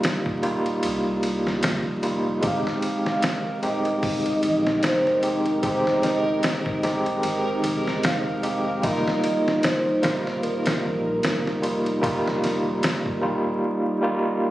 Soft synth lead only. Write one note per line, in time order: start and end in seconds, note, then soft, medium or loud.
2.45 3.03 F5 loud
3.08 3.60 F5 loud
3.66 4.80 D#5 loud
4.83 5.59 C5 loud
5.63 6.04 C5 medium
6.02 6.83 D#5 loud
8.04 8.85 F5 loud
8.84 9.66 D#5 loud
9.64 10.44 C5 loud
10.43 13.63 A#4 loud